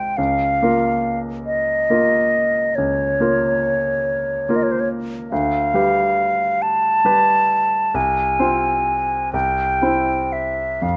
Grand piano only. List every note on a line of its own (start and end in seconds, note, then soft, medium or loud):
0.00 0.21 G#3 soft
0.00 0.21 F4 soft
0.00 0.20 C5 soft
0.18 0.60 C#2 soft
0.62 1.86 A#3 soft
0.62 1.86 F4 soft
0.62 1.87 A#4 soft
1.90 2.72 A#3 soft
1.90 2.72 F4 soft
1.90 2.72 A#4 soft
2.78 3.19 C#2 soft
3.20 4.44 A#3 soft
3.20 4.45 F4 soft
3.20 4.45 A#4 soft
4.49 5.28 A#3 soft
4.49 5.28 F4 soft
4.49 5.28 A#4 soft
5.32 5.73 D2 soft
5.74 7.01 G3 soft
5.74 7.02 G4 soft
5.74 7.02 B4 soft
7.05 7.91 G3 soft
7.05 7.91 G4 soft
7.05 7.91 B4 soft
7.94 8.38 C2 soft
8.40 9.29 C4 soft
8.40 9.30 F4 soft
8.40 9.30 C5 soft
9.34 9.81 C2 soft
9.82 10.78 C4 soft
9.82 10.78 E4 soft
9.82 10.79 C5 soft
10.82 10.97 F2 soft